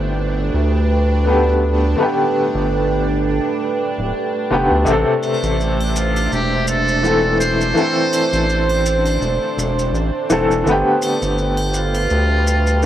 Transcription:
Already playing: G1 D3 A3 B3 D4 G4 B4
0.54 D2
1.24 D3 A3 B3
1.29 G4
1.96 D3 A3
2.00 B3 G4
2.54 G1
3.98 D1
4.50 F1 D3 A3 B3 G4
4.71 D2
4.85 A1 C3 A3 C5 E5, maracas
4.90 C4 A4
5.23 triangle, maracas
5.43 A1, maracas
5.60 maracas
5.81 triangle
5.96 F4, maracas
6.16 triangle, maracas
6.32 E1 G4, maracas
6.68 A4, maracas
6.88 maracas
7.03 E3 A3 C4 A4, maracas
7.40 C5, maracas
7.61 maracas
7.74 E3 A3 D4, maracas
7.79 C4 A4
8.13 triangle, maracas
8.33 A1, maracas
8.50 maracas
8.70 triangle
8.86 maracas
9.06 triangle, maracas
9.21 E1, maracas
9.57 E1, maracas
9.79 maracas
9.93 A1, maracas
10.30 E1 E3 A3 C4 A4, maracas
10.49 E1, maracas
10.64 G1 D3 A3 G4 B4, maracas
10.69 B3 G4
11.02 triangle, maracas
11.22 G1, maracas
11.38 maracas
11.57 triangle
11.74 F4, maracas
11.94 triangle, maracas
12.10 D2, maracas
12.47 maracas
12.67 maracas
12.82 D3, maracas

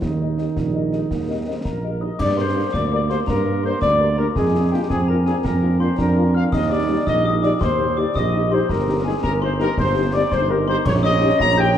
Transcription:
0.02 D#2 D#3 D#4, concert bass drum, snare
0.21 G4 A#4 D#5
0.38 G4 A#4 D#5, snare
0.57 A#1 G3, concert bass drum, snare
0.75 G4 A#4 D#5
0.93 G#3 G4 A#4 D#5, snare
1.11 D#2 A#3, concert bass drum, snare
1.28 G4 A#4 D#5
1.47 C4 G4 A#4 D#5
1.65 A#1 A#3 A#4 A#5, concert bass drum, snare
1.83 G4 A#4 D#5
2.01 D#4 G4 A#4 D#5 D#6
2.19 G2 A#3 D5 D6, concert bass drum, snare, crash
2.37 D4 G4 A#4 C5 C6
2.55 A#3 D4 G4 A#4
2.73 D2 D5 D6, concert bass drum, snare
2.92 D4 G4 A#4 D5 D6
3.10 A#3 D4 G4 A#4 C5 C6, snare
3.27 G2 A#4 A#5, concert bass drum, snare
3.46 D4 G4 A#4
3.63 A#3 D4 G4 A#4 C5 C6
3.81 D2 D5 D6, concert bass drum, snare
3.99 D4 G4 A#4
4.17 A#3 D4 G4 A#4 A#5
4.35 F2 G#3 G#4 G#5, concert bass drum, snare
4.54 A#3 D4 F4
4.72 A#3 D4 F4 G4 G5
4.89 F2 C4 G#4 G#5, concert bass drum, snare
5.08 A#3 D4 F4 A#4 A#5
5.26 A#3 D4 F4 G#4 G#5, snare
5.43 F2 A#3 A#4 A#5, concert bass drum, snare
5.62 A#3 D4 F4
5.80 A#3 D4 F4 C5 C6
5.98 F2 D4 A#4 A#5, concert bass drum, snare
6.16 A#3 D4 F4
6.34 A#3 D4 F4 F5 F6
6.52 D#2 D#4 D#5 D#6, concert bass drum, snare, crash
6.70 A#3 D#4 G4 D5 D6
6.88 G3 A#3 D#4 G4
7.07 A#1 D#5 D#6, concert bass drum, snare
7.24 A#3 D#4 G4 D#5 D#6
7.42 G3 A#3 D#4 G4 D5 D6, snare
7.61 D#2 G4 C5 C6, concert bass drum, snare
7.79 A#3 D#4 G4
7.97 G3 A#3 D#4 G4 D5 D6
8.15 A#1 D#5 D#6, concert bass drum, snare
8.33 A#3 D#4 G4
8.51 G3 A#3 D#4 G4 C5 C6
8.69 G1 A#4 A#5, concert bass drum, snare
8.87 A#3 D#4 G4
9.05 G3 A#3 D#4 G4 G#4 G#5
9.23 G1 A#4 A#5, concert bass drum, snare
9.41 A#3 D#4 G4 C5 C6
9.59 G3 A#3 D#4 G4 A#4 A#5, snare
9.77 G1 C5 C6, concert bass drum, snare
9.95 A#3 D#4 G4
10.13 G3 A#3 D#4 G4 D5 D6
10.31 G1 D#4 C5 C6, concert bass drum, snare
10.49 A#3 D#4 G4 A#4 A#5
10.67 G3 A#3 D#4 G4 C5 C6
10.85 A#1 C#4 C#5 C#6, concert bass drum, snare, crash
11.03 C#4 D#4 G4 D#5 D#6
11.21 G3 C#4 D#4 G4
11.39 A#1 A#5 A#6, concert bass drum, snare
11.58 C#4 D#4 G4 G5 G6

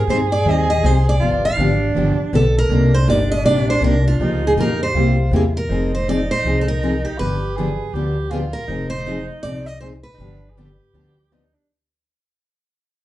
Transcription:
Already playing: G#4
0.07 G2 D#3 G3 C4 D#4 G#4 C5
0.32 D5
0.45 D#2 D#3 G3 C4 D#4 G#4 D#5
0.70 D#5
0.83 C2 D#3 G3 C4 D#4 G#4 C5
1.09 D5
1.20 G1 D3 F3 B3 D4 F4 G4
1.45 F5
1.57 G#1 D3 F3 B3 D4 G4
1.95 G1 D3 F3 B3 D4 G4
2.18 muted upright bass stroke
2.33 B1 D3 F3 B3 D4 G4 A4
2.59 A#4
2.70 C2 C3 G3 A#3 D4 D#4 G4
2.94 C5
3.07 G1 C3 G3 A#3 D#4 G4 D5
3.32 D#5
3.44 A#1 C3 G3 A#3 D#4 G4 D5
3.70 C5
3.81 C2 C3 G3 A#3 D#4 G4 A#4
4.08 F4
4.20 C#2 C#3 F3 A#3 D#4 F4 G4
4.47 G#4
4.57 F2 C#3 F3 A#3 F4 G4 A#4
4.83 C5
4.90 G4
4.94 C2 C3 G3 A#3 E4 F4 G4
5.31 E2 C3 G3 A#3 E4 G4
5.36 G#4
5.57 A#4
5.69 F1 F3 C4 D#4 G#4
5.95 C5
6.08 F3 C4 D#4 G#4 D5
6.31 C5
6.44 C2 F3 C4 D#4 G#4
6.61 A4
6.68 A#4
6.83 F3 C4 D#4 G#4
7.05 G4
7.18 G1 D3 F3 B3 D4 G4 B4
7.56 D3 F3 B3 D4 G4 G#4
7.94 D2 D3 F3 B3 D4 G4
8.31 D3 F3 B3 D4 F4 G4 G#4
8.53 A#4
8.68 F1 F3 C4 D#4 G#4
8.90 C5
9.06 F3 C4 D#4 G#4
9.43 C2 F3 C4 D#4 G#4 D5
9.66 D#5
9.81 F3 C4 D#4 G#4 C5
10.03 B4
10.14 D4 D#4
10.18 G1 D3 F3 B3 D4 G4
10.50 G#4
10.57 D3 F3 B3 D4 G4
10.93 D2 D3 F3 B3 D4 G4
11.32 D3 F3 B3 D4 D#4 G4
11.53 D4

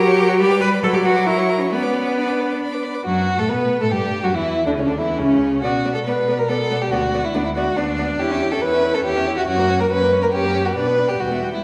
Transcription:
Already playing: F#3 G4
0.07 C#5 C#6
0.18 A#4 A#5
0.28 F#4 C#5 C#6
0.39 G3 G4 D5 B5
0.51 B4 D6
0.61 B4 D5 B5
0.73 B4 D6
0.83 F#3 A4 B4 B5
0.94 G4 D5 D6
1.04 F#4 B4 B5
1.16 D5 D6
1.26 E4 A#4 A#5
1.37 C#5 C#6
1.49 A#4 A#5
1.60 C#4 C#5 C#6
1.71 B3 C#4 D5 B5
1.83 B4 D6
1.94 D5 B5
2.06 B4 D6
2.17 D4 D5 B5
2.28 B4 D6
2.40 D5 B5
2.51 B4 D6
2.61 D5 B5
2.72 B4 D6
2.83 D5 B5
2.94 B4 D6
3.05 F#2 F#3 F#4
3.38 A2 A3 A4
3.49 B2 B3 B4
3.80 A2 A3 A4
3.91 G2 G3 G4
4.23 F#2 F#3 F#4
4.34 E2 E3 E4
4.66 D2 D3 D4
4.77 C#2 C#3 C#4
4.87 D2 D3 D4
4.98 E2 E3 E4
5.19 C#2 C#3 C#4
5.62 B2 B3 F#4 D5
5.85 B3 D5
5.94 A4
6.05 B2 B3 B4 D5
6.28 B3 D5
6.38 A#4
6.48 B2 B3 A4 D5
6.71 B3 D5
6.81 G4
6.90 D2 B3 F#4 D5
7.14 B3 D5
7.24 E4
7.34 D2 B3 D4 D5
7.45 E4
7.56 B3 F#4 D5
7.76 D2 B3 D4 D5
7.98 B3 D5
8.19 E2 E4 G4 C#5
8.31 C#4 E5
8.42 E4 C#5
8.52 C#4 A4 E5
8.61 E2 E4 B4 C#5
8.73 C#4 E5
8.83 E4 C#5
8.94 C#4 A4 E5
9.04 E2 E4 G4 C#5
9.16 C#4 E5
9.26 E4 C#5
9.37 C#4 F#4 E5
9.47 F#2 C#4 F#4 C#5
9.58 A#3 A#4
9.69 C#4 C#5
9.80 A#3 A#4
9.91 F#2 C#4 B4 C#5
10.02 A#3 A#4
10.12 C#4 C#5
10.22 A#3 A#4
10.33 F#2 C#4 G4 C#5
10.44 A#3 A#4
10.54 C#4 C#5
10.64 A#3 F#4 A#4
10.75 B2 D4 B4 D5
10.87 B3 B4
10.99 D4 D5
11.08 B3 G4 B4
11.20 E2 G3 F#4 G5
11.31 B3 E5
11.41 G3 G5
11.53 B3 E4 E5

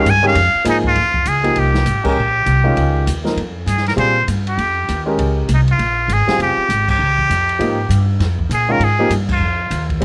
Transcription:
0.00 F5
0.05 G2, hi-hat pedal, ride
0.10 G#5
0.23 D#3 G#3 C#4 G4
0.27 F5
0.35 F2, ride
0.54 muted upright bass stroke
0.65 G#2 F3 A#3 D#4 G#4, hi-hat pedal, ride
0.69 D#4
0.84 F4, kick
0.95 F2, ride
1.14 kick
1.25 C#2 G#4, hi-hat pedal, ride
1.43 F3 A#3 D#4 G4, ride
1.56 C2 G4, ride
1.74 snare
1.86 G#1, hi-hat pedal, ride
2.04 G#3 C#4 G4 A#4, muted upright bass stroke, kick, crash
2.08 G4
2.17 A#1
2.46 C2, hi-hat pedal, ride
2.64 D#3 G#3 C#4 F4
2.76 C#2, ride
3.06 D#2, hi-hat pedal, ride
3.24 F3 A#3 D#4 A#4, snare
3.36 F2, ride
3.66 G2 G#4, hi-hat pedal, ride
3.77 snare
3.86 A#4, snare, ride
3.96 A#2 G3 C4 F4 G#4 C5, ride
4.27 G2, hi-hat pedal, ride
4.47 G4, ride
4.58 F2, ride
4.89 D#2, hi-hat pedal, ride
5.06 G#3 C#4 G4 A#4
5.18 C#2, ride
5.48 C2, hi-hat pedal, ride
5.54 D#4
5.68 F4, ride
5.79 A#1, ride
6.08 G#1, hi-hat pedal, ride
6.13 G#4
6.27 C4 F4 G4 G#4, muted upright bass stroke, snare, ride
6.39 F1 G4, ride
6.57 muted upright bass stroke
6.69 G#1, hi-hat pedal, ride
6.88 G4, kick, crash
6.99 C#2
7.19 kick
7.29 F2, hi-hat pedal, ride
7.49 ride
7.59 G#2 F3 A#3 D#4 G4, ride
7.89 G2, hi-hat pedal, ride
8.19 F2, snare, ride
8.39 kick
8.49 A#2, hi-hat pedal, ride
8.54 G#4
8.69 D#3 G#3 C#4 F4 A#4
8.79 G#2, ride
8.84 G#4
8.99 F3 A#3 D#4 G4
9.10 G2, hi-hat pedal, ride
9.29 F4, kick, crash
9.40 F2
9.70 D#2, hi-hat pedal, ride
9.89 kick, ride
10.00 C#2 G3 C4 F4 G#4, ride

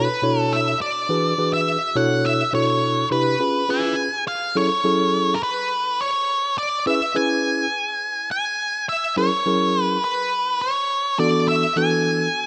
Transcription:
Already playing: B4
0.23 B2 D4 E4 F#4 A4 C#5
0.41 A4
0.53 E5
0.82 D5
1.09 E3 D4 F#4 G#4 B4
1.38 E3 D4 F#4 G#4 B4
1.53 E5
1.95 B2 D4 E4 F#4 A4 C#5 F#5
2.26 E5
2.53 B2 D4 E4 F#4 A4 C#5
3.11 C3 D4 E4 G4 B4
3.40 C#4 F4 G#4 B4
3.69 C#4 F4 G#4 B4 G#5
4.28 F5
4.55 F#3 C#4 E4 G#4 A4 C#5
4.84 F#3 C#4 E4 G#4 A4
5.35 A#4
5.43 B4
6.01 C#5
6.58 D5
6.86 C#4 E4 G#4 B4 E5
7.15 C#4 E4 G#4 B4 G#5
8.31 G#5
8.89 E5
9.17 F#3 C#4 E4 G#4 A#4 C#5
9.46 F#3 C#4 E4 G#4 A#4
9.82 B4
10.04 B4
10.61 C#5
11.19 E3 B3 D4 F#4 A4 D5
11.48 E5
11.76 E3 B3 D4 F#4 A4 G#5

